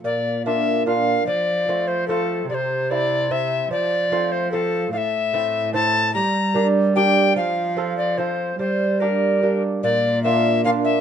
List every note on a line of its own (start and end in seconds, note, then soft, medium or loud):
0.04 1.23 A#2 medium
0.04 1.23 A#2 soft
0.04 0.43 D5 medium
0.46 0.82 A#3 soft
0.46 0.83 D4 soft
0.46 0.83 F4 soft
0.46 0.86 E5 medium
0.86 1.23 A#3 soft
0.86 1.23 D4 soft
0.86 1.24 F4 soft
0.86 1.26 F5 medium
1.27 1.68 F3 medium
1.27 2.47 F3 medium
1.27 1.89 D5 medium
1.69 2.05 A3 soft
1.69 2.05 C4 soft
1.69 2.05 F4 soft
1.88 2.07 C5 medium
2.08 2.45 A3 soft
2.08 2.46 C4 soft
2.08 2.46 F4 soft
2.08 2.48 A4 medium
2.49 3.69 C3 medium
2.49 3.68 C3 soft
2.49 2.55 D5 medium
2.54 2.92 C5 medium
2.90 3.27 C4 soft
2.90 3.27 E4 soft
2.90 3.33 D5 medium
3.31 3.68 C4 soft
3.31 3.67 E4 medium
3.31 3.71 E5 medium
3.71 4.91 F3 medium
3.71 4.12 F3 medium
3.71 4.33 D5 medium
4.12 4.49 A3 medium
4.12 4.49 C4 soft
4.12 4.49 F4 medium
4.32 4.51 C5 medium
4.51 4.90 A3 soft
4.51 4.90 C4 medium
4.51 4.90 F4 soft
4.51 4.92 A4 medium
4.92 6.11 A2 medium
4.92 6.16 A2 medium
4.92 4.98 F5 medium
4.97 5.72 E5 loud
5.33 5.70 A3 soft
5.33 5.70 C4 soft
5.33 5.70 E4 medium
5.73 6.10 A3 soft
5.73 6.11 C4 soft
5.73 6.11 E4 medium
5.73 6.14 A5 medium
6.14 7.33 G3 medium
6.14 7.38 G3 medium
6.14 6.67 A#5 medium
6.54 6.92 A#3 soft
6.54 6.92 D4 soft
6.54 6.92 G4 medium
6.95 7.32 A#3 soft
6.95 7.33 D4 soft
6.95 7.33 G4 soft
6.95 7.34 G5 medium
7.36 8.55 F3 medium
7.36 8.59 F3 medium
7.36 7.96 F5 medium
7.77 8.14 C4 soft
7.77 8.14 F4 soft
7.77 8.14 A4 soft
7.97 8.19 D5 medium
8.18 8.55 C4 soft
8.18 8.56 F4 soft
8.18 8.56 A4 soft
8.18 8.59 C5 medium
8.59 9.59 G3 soft
8.59 9.61 G3 soft
8.59 9.02 C5 medium
9.00 9.38 A#3 soft
9.00 9.39 D4 soft
9.00 9.39 G4 soft
9.00 9.63 A#4 medium
9.42 9.80 A#3 soft
9.42 9.80 D4 soft
9.42 9.80 G4 soft
9.83 11.01 A#2 medium
9.83 10.22 D5 medium
10.23 10.61 A#3 medium
10.23 10.62 D4 medium
10.23 10.62 F4 medium
10.23 10.64 E5 loud
10.64 11.01 A#3 medium
10.64 11.01 D4 medium
10.64 11.01 F4 medium
10.64 10.70 F5 loud
10.84 11.01 E5 medium